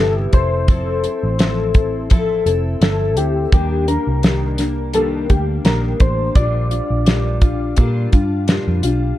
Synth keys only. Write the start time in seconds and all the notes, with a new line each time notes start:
0.00 A4
0.34 C5
2.82 A4
3.17 G4
3.53 G4
3.88 A#4
4.94 A4
5.30 G4
5.65 A#4
6.01 C5
6.36 D5